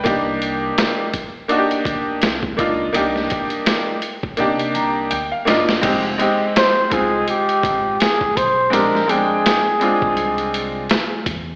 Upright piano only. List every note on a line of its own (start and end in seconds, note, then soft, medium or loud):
0.00 1.04 A#3 loud
0.00 0.24 B4 medium
0.05 1.05 D4 medium
0.05 1.06 D#4 medium
0.05 1.06 G4 loud
1.48 2.23 A#3 medium
1.48 2.24 D4 medium
1.48 2.24 D#4 medium
1.48 1.58 F#4 medium
1.58 2.28 G4 medium
2.57 2.84 A#3 medium
2.57 2.84 D4 medium
2.57 2.85 D#4 medium
2.57 2.86 F4 medium
2.93 3.94 A#3 medium
2.93 3.94 D4 medium
2.93 3.95 D#4 medium
2.93 3.95 G4 loud
4.37 5.12 A#3 medium
4.37 5.13 D4 medium
4.37 5.13 D#4 medium
4.37 5.14 G4 medium
4.74 5.08 A#5 medium
5.11 5.30 G5 medium
5.32 5.46 F5 medium
5.45 5.73 A#3 medium
5.45 5.73 D4 medium
5.45 5.74 D#4 medium
5.45 5.74 F4 medium
5.45 5.81 D#5 medium
5.81 6.09 G#3 medium
5.81 6.09 C4 medium
5.81 6.10 D#4 medium
5.81 6.11 G4 loud
6.18 6.70 G#3 medium
6.18 6.71 C4 medium
6.18 6.71 D#4 medium
6.18 6.72 G4 medium
6.90 7.91 G#3 medium
6.90 7.91 C4 medium
6.90 7.92 D#4 medium
6.90 7.93 F4 medium
8.70 8.98 G#3 medium
8.70 8.98 C4 medium
8.70 8.99 D4 medium
8.70 9.00 G4 medium
9.07 9.59 G#3 medium
9.07 9.59 C4 medium
9.07 9.60 D4 medium
9.07 9.61 G5 medium
9.80 10.80 G#3 medium
9.80 10.81 C4 medium
9.80 10.81 D4 medium
9.80 10.82 F4 medium